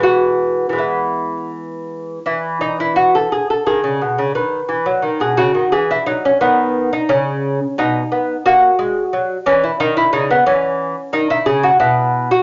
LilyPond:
<<
  \new Staff \with { instrumentName = "Lute" } { \time 3/4 \key e \major \tempo 4 = 88 fis'4 e'4 r4 | e'8 dis'16 e'16 fis'16 a'16 gis'16 a'16 gis'4 | b'4~ b'16 gis'16 fis'8 gis'16 e'16 dis'16 cis'16 | b8. dis'16 cis'4 dis'4 |
fis'4. cis'16 e'16 dis'16 e'16 dis'16 b16 | cis'4 dis'16 e'16 gis'16 fis'16 e'8. fis'16 | }
  \new Staff \with { instrumentName = "Lute" } { \clef bass \time 3/4 \key e \major <e gis b>4 <e gis b>2 | e2 dis16 cis16 b,16 cis16 | dis8 e16 fis16 dis16 b,16 cis16 dis16 e8 fis8 | dis4 cis4 b,8 b8 |
ais8 gis8 fis8 e8 dis8 cis8 | e4 dis8 cis8 b,4 | }
>>